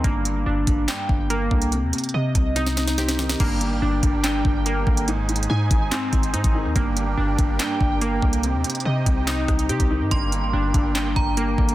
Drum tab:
CC |------------------------------------------------------------------------------------------------|------------------------------------------------------------------------------------------------|x-----------------------------------------------------------------------------------------------|------------------------------------------------------------------------------------------------|
HH |x-----------x-----------------------x-----------x-----------------------x-----------------x-----|x-----------x--x--x--x--------------x-----------x-----------x-----x-----x-----x-----------------|x-----------x-----------------------x-----------x-----------------------x-----------------x-----|x-----------x---x---x---------------x-----------x-----------x-----x-----x-----x-----------------|
CP |------------------------------------------------x-----------------------------------------------|------------------------------------------------------------------------------------------------|------------------------------------------------x-----------------------------------------------|------------------------------------------------x-----------------------------------------------|
SD |------------------------------------------------o-----------------------------------------------|------------------------------------------------o-----o-----o-----o-----o-----o-----o-----o-----|------------------------------------------------o-----------------------------------------------|------------------------------------------------o-----------------------------------------------|
BD |o-----------------------------------o-----------------------o-----------------------o-----------|------------------------------------o-----------------------------------------------------------|o-----------------------------------o-----------------------o-----------------------o-----------|------------------------------------o-----------------------o-----------------o-----------------|

CC |------------------------------------------------------------------------------------------------|------------------------------------------------------------------------------------------------|------------------------------------------------------------------------------------------------|
HH |x-----------x-----------------------x-----------x-----------------------x-----------------x-----|x-----------x--x--x--x--------------x-----------x-----------x-----x-----x-----x-----------------|x-----------x-----------------------x-----------x-----------------------x-----------------x-----|
CP |------------------------------------------------x-----------------------------------------------|------------------------------------------------x-----------------------------------------------|------------------------------------------------x-----------------------------------------------|
SD |------------------------------------------------o-----------------------------------------------|------------------------------------------------o-----------r-----------------------------------|------------------------------------------------o-----------------------------------------------|
BD |o-----------------------------------o-----------------------o-----------------------o-----------|------------------------------------o-----------------------o-----------------o-----------------|o-----------------------------------o-----------------------o-----------------------o-----------|